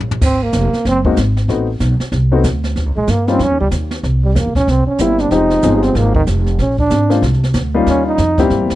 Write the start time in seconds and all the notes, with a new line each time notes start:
Already playing: A#1
0.00 floor tom
0.11 floor tom
0.21 G#1 C4, brush sweep, kick, snare, crash
0.43 A#3
0.52 F1, kick, snare, hi-hat pedal
0.73 muted upright bass stroke, snare
0.85 F#1 C4, brush sweep, kick, snare
1.05 G#3 A#3 C4 D#4 F#4, kick
1.16 G#1, kick, snare, hi-hat pedal
1.37 snare
1.48 A1 A3 B3 C4 D#4 F#4, brush sweep, kick, snare
1.80 B1, kick, snare, hi-hat pedal
2.00 muted upright bass stroke, snare
2.12 C2, brush sweep, kick, snare
2.32 A3 B3 C4 D#4 F#4
2.44 D2, kick, snare, hi-hat pedal
2.64 snare
2.76 D#2, brush sweep, kick, snare
2.86 C#2
2.96 A#1 G#3
3.07 G2 A#3, kick, snare, hi-hat pedal
3.27 G3 A#3 C4 C#4 D#4 F4, snare
3.39 F2 C#4, brush sweep, kick, snare
3.50 D#2
3.60 C#2 G3
3.71 D#2, kick, snare, hi-hat pedal
3.91 snare
4.03 C2, brush sweep, kick, snare
4.24 G3
4.35 E2 A#3, kick, snare, hi-hat pedal
4.46 C2
4.55 A#1 C#4, kick, snare
4.67 C2 C4, brush sweep, kick, snare
4.87 C#4, muted upright bass stroke
4.98 G1 G3 A#3 C4 E4 G4, kick, snare, hi-hat pedal
5.18 D4, snare
5.31 F1 F3 G#3 C4 D#4 G4, brush sweep, kick, snare
5.50 snare
5.62 G1 F3 G#3 C4 D#4 G#4, kick, snare, hi-hat pedal
5.82 C4, snare
5.95 G#1 A#3, brush sweep, kick, snare
6.15 D#3, kick
6.27 F1, kick, snare, hi-hat pedal
6.46 snare
6.58 A#1 C#4, brush sweep, kick, snare
6.78 D4, kick
6.90 G#1, kick, snare, hi-hat pedal
7.10 G#3 A#3 C4 D4 F4, snare
7.22 C2, brush sweep, kick, snare
7.33 snare
7.43 snare
7.54 D2, kick, snare, hi-hat pedal
7.74 G3 A#3 C#4 D#4 F4
7.86 D#2 C#4, brush sweep, kick, snare
8.06 D#4
8.18 F2, kick, snare, hi-hat pedal
8.37 G3 A#3 C4 E4 G4, kick, snare
8.50 G2, brush sweep, kick, snare
8.61 E2
8.70 C2, snare